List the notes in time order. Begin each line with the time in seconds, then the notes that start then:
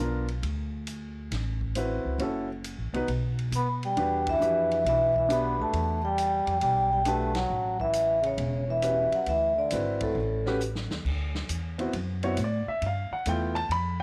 Already playing: B1 F3 F5
0.00 B3 D4 F4 A#4
0.28 ride
0.43 D2, ride
0.87 hi-hat pedal, ride
1.31 A1, snare, ride
1.61 kick
1.75 C4 E4 F#4 B4, hi-hat pedal, ride
2.05 C#2
2.18 F#1 C#4 E4 F#4 A4, ride
2.64 hi-hat pedal, ride
2.78 A1
2.93 C2 B3 D#4 F#4 B4, ride
3.08 B1, ride
3.39 ride
3.52 B2 B5, hi-hat pedal, ride
3.56 B3
3.83 G3 G5, ride
3.97 E2 D4 F#4 G4 B4, ride
4.27 E3 E5, kick, ride
4.40 F2 D4 F#4 G4 B4, hi-hat pedal
4.71 ride
4.85 B1 E3 E5, ride
5.16 E3 E5, kick
5.29 B3 D4 F#4 G4 B4 B5, hi-hat pedal, ride
5.59 D2 A3 A5
5.73 E2, ride
6.04 G3 G5
6.18 hi-hat pedal, ride
6.47 F2, ride
6.60 B1 G3 G5, ride
6.93 G3 G5
7.05 A3 D4 F#4 G4 B4 A5, hi-hat pedal, ride
7.35 F#3 F#5, snare, ride
7.50 A1
7.80 E3 E5, kick
7.93 hi-hat pedal, ride
8.22 C#3, ride
8.27 C#5
8.38 E1, ride
8.68 E3 E5
8.82 C#4 F#4 G4 B4, hi-hat pedal, ride
9.12 F#3 F#5, muted upright bass stroke, ride
9.26 D2 E3 E5, ride
9.55 D3 D5
9.71 G#1 C4 E4 F#4 B4, hi-hat pedal, ride
10.00 A2 A4, kick, ride
10.15 A1
10.46 C#4 F#4 G4 B4, snare
10.60 hi-hat pedal
10.75 snare
10.90 D#2, snare
11.05 D2, kick, crash
11.35 snare
11.49 E2, hi-hat pedal, ride
11.78 B3 C4 E4 F#4, ride
11.93 F#2, ride
12.23 B3 C4 E4 F#4 C#5, ride
12.37 A2, hi-hat pedal, ride
12.44 D5
12.67 E5, muted upright bass stroke
12.82 G2, ride
12.86 F5
13.11 F#5, muted upright bass stroke
13.26 E2 A3 B3 E4 F4 G5, hi-hat pedal, ride
13.55 A5, ride
13.69 F2 B5, ride